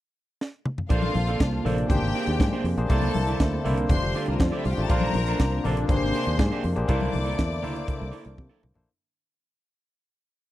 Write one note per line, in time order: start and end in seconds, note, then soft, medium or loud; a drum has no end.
0.41 snare medium
0.65 mid tom medium
0.78 floor tom medium
0.89 1.09 A#1 loud
0.89 2.88 C3 medium
0.89 1.55 A#3 medium
0.89 3.87 A#3 medium
0.89 1.13 D4 medium
0.89 1.55 D4 medium
0.89 2.88 D4 medium
0.89 1.55 F4 medium
0.89 1.64 F4 medium
0.89 1.56 A4 medium
0.89 1.89 A4 medium
0.89 1.13 A4 medium
0.89 1.56 C5 medium
0.89 1.14 C5 medium
0.89 1.64 F5 loud
0.89 kick loud
0.89 closed hi-hat soft
0.89 muted conga soft
1.03 muted conga soft
1.03 high conga medium
1.14 1.34 A#1 loud
1.14 muted clean electric guitar stroke soft
1.14 open hi-hat medium
1.14 high conga medium
1.27 1.39 D4 soft
1.27 1.40 A4 medium
1.27 1.40 C5 medium
1.27 closed hi-hat soft
1.40 1.59 C2 medium
1.40 muted clean electric guitar stroke soft
1.40 kick loud
1.40 snare loud
1.40 closed hi-hat medium
1.52 muted clean electric guitar stroke soft
1.52 muted conga soft
1.65 1.84 A#1 medium
1.65 1.88 A#3 medium
1.65 1.85 D4 medium
1.65 1.88 D4 medium
1.65 1.90 F4 medium
1.65 1.77 A4 medium
1.65 1.90 A4 medium
1.65 1.90 C5 medium
1.65 1.76 C5 medium
1.65 open hi-hat medium
1.65 low conga medium
1.77 muted clean electric guitar stroke medium
1.77 closed hi-hat medium
1.89 1.99 G#1 loud
1.89 2.89 G#3 medium
1.89 2.66 A#3 medium
1.89 2.66 D4 medium
1.89 2.63 G4 medium
1.89 2.66 G4 medium
1.89 2.66 G#4 medium
1.89 2.67 C5 medium
1.89 2.63 G5 loud
1.89 muted clean electric guitar stroke soft
1.89 kick loud
1.89 closed hi-hat medium
1.89 muted conga soft
1.89 low conga medium
2.02 2.12 G#1 medium
2.02 muted clean electric guitar stroke soft
2.15 2.35 D4 medium
2.15 2.28 G4 medium
2.15 2.27 C5 medium
2.15 open hi-hat medium
2.26 2.37 D#2 medium
2.26 muted clean electric guitar stroke soft
2.26 closed hi-hat soft
2.39 2.50 G#2 loud
2.39 muted clean electric guitar stroke soft
2.39 kick loud
2.39 snare loud
2.39 closed hi-hat medium
2.39 high conga medium
2.53 2.65 D4 medium
2.53 2.65 G4 medium
2.53 2.66 C5 medium
2.53 muted conga soft
2.64 2.74 F2 medium
2.64 muted clean electric guitar stroke soft
2.64 open hi-hat medium
2.77 2.87 A#1 medium
2.77 2.88 A#3 medium
2.77 2.88 D4 medium
2.77 2.88 G4 medium
2.77 2.89 G#4 medium
2.77 2.89 C5 medium
2.77 muted clean electric guitar stroke soft
2.77 closed hi-hat soft
2.89 3.09 C2 loud
2.89 4.87 D3 medium
2.89 3.55 A#3 medium
2.89 3.13 A#3 medium
2.89 5.86 C4 medium
2.89 3.55 D4 medium
2.89 3.89 E4 medium
2.89 3.55 E4 medium
2.89 3.14 E4 medium
2.89 3.63 A4 medium
2.89 3.56 A4 medium
2.89 3.14 A4 medium
2.89 3.56 C5 loud
2.89 3.63 A5 loud
2.89 kick loud
2.89 closed hi-hat medium
2.89 muted conga soft
3.02 high conga medium
3.14 3.34 C2 loud
3.14 muted clean electric guitar stroke soft
3.14 open hi-hat medium
3.14 high conga medium
3.27 3.39 A#3 medium
3.27 3.40 E4 medium
3.27 3.40 A4 medium
3.27 closed hi-hat soft
3.40 3.59 D2 medium
3.40 muted clean electric guitar stroke soft
3.40 kick medium
3.40 snare loud
3.40 closed hi-hat medium
3.40 muted conga soft
3.52 muted clean electric guitar stroke soft
3.52 muted conga soft
3.65 3.84 C2 medium
3.65 3.84 A#3 medium
3.65 3.90 A#3 medium
3.65 3.89 D4 medium
3.65 3.90 E4 medium
3.65 3.78 E4 medium
3.65 3.77 A4 medium
3.65 3.90 A4 medium
3.65 3.91 C5 loud
3.65 open hi-hat medium
3.65 low conga medium
3.77 muted clean electric guitar stroke soft
3.77 closed hi-hat medium
3.89 3.99 F1 loud
3.89 4.89 G3 medium
3.89 4.66 A3 medium
3.89 4.66 D4 medium
3.89 4.88 F4 medium
3.89 4.66 F4 medium
3.89 4.66 G4 medium
3.89 3.96 B4 medium
3.89 4.26 C5 medium
3.89 4.26 C6 loud
3.89 muted clean electric guitar stroke soft
3.89 kick loud
3.89 closed hi-hat medium
3.89 muted conga soft
3.89 low conga medium
3.97 4.69 C5 medium
4.02 4.12 F1 medium
4.02 muted clean electric guitar stroke soft
4.02 muted conga soft
4.14 4.35 D4 medium
4.14 4.28 G4 medium
4.14 4.27 A4 medium
4.14 open hi-hat medium
4.26 4.37 C2 medium
4.26 muted clean electric guitar stroke soft
4.26 closed hi-hat soft
4.31 4.40 A#3 soft
4.31 4.39 A#4 medium
4.39 4.49 F2 medium
4.39 4.48 C4 medium
4.39 4.48 C5 medium
4.39 muted clean electric guitar stroke soft
4.39 kick loud
4.39 snare loud
4.39 closed hi-hat medium
4.39 muted conga soft
4.39 high conga medium
4.48 4.56 D4 medium
4.48 4.65 A4 medium
4.48 4.56 D5 medium
4.48 muted conga soft
4.52 4.64 D4 medium
4.52 4.64 G4 medium
4.57 4.65 E4 medium
4.57 4.65 E5 medium
4.65 4.75 C2 medium
4.65 4.73 F4 medium
4.65 4.73 F5 medium
4.65 muted clean electric guitar stroke soft
4.65 open hi-hat medium
4.73 4.81 G4 medium
4.73 4.81 G5 medium
4.77 4.87 A1 medium
4.77 4.88 A3 medium
4.77 4.88 D4 medium
4.77 4.89 F4 medium
4.77 4.89 G4 medium
4.77 4.89 C5 medium
4.77 muted clean electric guitar stroke soft
4.77 closed hi-hat soft
4.82 4.90 A4 medium
4.82 4.90 A5 loud
4.89 5.09 A#1 loud
4.89 6.88 C3 medium
4.89 5.55 A#3 medium
4.89 8.84 A#3 medium
4.89 5.55 D4 medium
4.89 5.13 D4 medium
4.89 6.88 D4 medium
4.89 5.55 F4 medium
4.89 5.13 A4 medium
4.89 5.63 A#4 loud
4.89 5.55 A#4 medium
4.89 5.56 C5 loud
4.89 5.13 C5 medium
4.89 5.63 A#5 loud
4.89 kick loud
4.89 closed hi-hat medium
4.89 muted conga soft
5.01 muted conga soft
5.01 high conga loud
5.13 5.34 A#1 loud
5.13 muted clean electric guitar stroke soft
5.13 open hi-hat medium
5.13 high conga medium
5.27 5.39 D4 medium
5.27 5.40 A4 medium
5.27 5.40 C5 medium
5.27 closed hi-hat medium
5.40 5.59 C2 medium
5.40 muted clean electric guitar stroke soft
5.40 kick medium
5.40 snare loud
5.40 closed hi-hat medium
5.40 muted conga soft
5.52 muted clean electric guitar stroke soft
5.64 5.84 A#1 medium
5.64 5.87 A#3 loud
5.64 5.88 D4 medium
5.64 5.84 D4 medium
5.64 5.89 F4 medium
5.64 5.90 A4 medium
5.64 5.77 A4 medium
5.64 5.76 C5 medium
5.64 5.90 D5 loud
5.64 open hi-hat medium
5.64 low conga medium
5.77 muted clean electric guitar stroke soft
5.77 closed hi-hat medium
5.89 5.99 G#1 loud
5.89 6.88 G#3 medium
5.89 6.65 A#3 medium
5.89 6.65 D4 medium
5.89 6.65 G4 medium
5.89 6.66 G#4 medium
5.89 5.96 B4 medium
5.89 6.63 C5 loud
5.89 6.63 C6 loud
5.89 muted clean electric guitar stroke soft
5.89 kick loud
5.89 closed hi-hat medium
5.89 muted conga soft
5.89 low conga medium
5.96 6.69 C5 medium
6.01 6.12 G#1 medium
6.01 muted clean electric guitar stroke soft
6.01 muted conga soft
6.13 6.34 D4 medium
6.13 6.26 G4 medium
6.13 6.25 C5 medium
6.13 open hi-hat medium
6.25 6.36 D#2 medium
6.25 muted clean electric guitar stroke soft
6.25 closed hi-hat soft
6.38 6.49 G#2 loud
6.38 muted clean electric guitar stroke soft
6.38 kick loud
6.38 snare loud
6.38 closed hi-hat medium
6.38 muted conga soft
6.38 high conga medium
6.51 6.63 D4 medium
6.51 6.63 G4 medium
6.51 6.64 C5 medium
6.51 muted conga soft
6.64 6.74 F2 medium
6.64 muted clean electric guitar stroke medium
6.64 open hi-hat medium
6.76 6.86 A#1 medium
6.76 6.87 A#3 medium
6.76 6.87 D4 medium
6.76 6.87 G4 medium
6.76 6.88 G#4 medium
6.76 6.88 C5 medium
6.76 muted clean electric guitar stroke soft
6.76 closed hi-hat soft
6.88 7.08 C2 loud
6.88 8.86 D3 medium
6.88 7.11 A#3 medium
6.88 7.54 A#3 loud
6.88 7.54 D4 medium
6.88 7.12 E4 medium
6.88 7.54 E4 medium
6.88 8.86 E4 medium
6.88 7.54 A4 medium
6.88 8.86 A4 medium
6.88 7.12 A4 medium
6.88 7.54 C5 loud
6.88 8.60 D5 loud
6.88 8.60 D6 loud
6.88 kick loud
6.88 closed hi-hat medium
7.01 high conga medium
7.13 7.33 C2 loud
7.13 muted clean electric guitar stroke soft
7.13 open hi-hat medium
7.13 high conga medium
7.25 7.36 A#3 medium
7.25 7.37 E4 medium
7.25 7.37 A4 medium
7.25 closed hi-hat medium
7.38 7.64 E2 loud
7.38 muted clean electric guitar stroke medium
7.38 kick loud
7.38 snare loud
7.38 closed hi-hat medium
7.38 muted conga soft
7.50 muted clean electric guitar stroke soft
7.62 7.83 D2 loud
7.62 7.83 A#3 medium
7.62 8.50 A#3 medium
7.62 8.50 D4 medium
7.62 7.74 E4 medium
7.62 8.50 E4 medium
7.62 7.73 A4 medium
7.62 8.51 A4 medium
7.62 8.51 C5 loud
7.62 open hi-hat medium
7.62 high conga soft
7.62 low conga medium
7.75 muted clean electric guitar stroke medium
7.75 closed hi-hat medium
7.87 muted clean electric guitar stroke soft
7.87 kick loud
7.87 closed hi-hat medium
7.87 muted conga soft
7.87 low conga medium
8.00 8.11 C2 loud
8.00 muted clean electric guitar stroke medium
8.00 muted conga soft
8.12 8.32 A#3 medium
8.12 8.25 E4 medium
8.12 8.24 A4 medium
8.12 open hi-hat medium
8.25 8.35 C2 medium
8.25 muted clean electric guitar stroke medium
8.25 closed hi-hat medium
8.37 8.48 C3 loud
8.37 muted clean electric guitar stroke soft
8.37 kick loud
8.37 high tom medium
8.37 high conga medium
8.49 8.61 A#3 medium
8.49 8.62 E4 medium
8.49 8.62 A4 medium
8.62 8.73 C2 medium
8.62 muted clean electric guitar stroke soft
8.62 mid tom medium
8.74 8.85 A#1 medium
8.74 8.86 A#3 medium
8.74 8.86 D4 medium
8.74 8.87 E4 medium
8.74 8.87 A4 medium
8.74 8.87 C5 medium
8.74 muted clean electric guitar stroke soft
8.74 floor tom medium